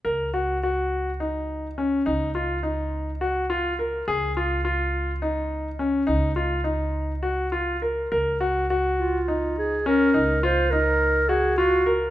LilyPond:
<<
  \new Staff \with { instrumentName = "Clarinet" } { \time 7/8 \key ees \dorian \tempo 4 = 104 r2. r8 | r2. r8 | r2. r8 | r2. r8 |
r4. f'4 aes'8 bes'8~ | bes'8 c''8 bes'4 aes'8 ges'8. r16 | }
  \new Staff \with { instrumentName = "Grand piano" } { \time 7/8 \key ees \dorian bes'8 ges'8 ges'4 ees'4 des'8 | ees'8 f'8 ees'4 ges'8 f'8 bes'8 | aes'8 f'8 f'4 ees'4 des'8 | ees'8 f'8 ees'4 ges'8 f'8 bes'8 |
bes'8 ges'8 ges'4 ees'4 des'8 | ees'8 f'8 ees'4 ges'8 f'8 bes'8 | }
  \new Staff \with { instrumentName = "Upright bass" } { \clef bass \time 7/8 \key ees \dorian des,2.~ des,8 | des,2.~ des,8 | des,2.~ des,8 | des,2.~ des,8 |
des,2.~ des,8 | des,2.~ des,8 | }
>>